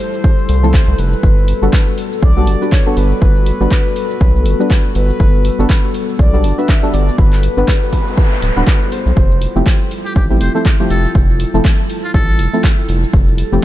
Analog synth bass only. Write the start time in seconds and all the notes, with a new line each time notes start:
0.49 C2
0.88 C2
0.99 F1
1.23 G1
1.62 G1
2.23 B1
2.47 G1
2.97 G1
3.22 G1
3.61 G1
4.21 B1
4.46 G1
4.95 G1
5.20 G1
5.59 G1
6.19 B1
6.44 G1
6.94 G1
7.18 G1
7.57 G1
8.43 D1
8.57 D1
9.06 B1
9.17 F1
9.56 F1
10.16 A1
10.41 F1
10.90 F1
11.15 F1
11.54 F1
12.14 A1
12.39 F1
12.89 F1
13.13 F1
13.52 F1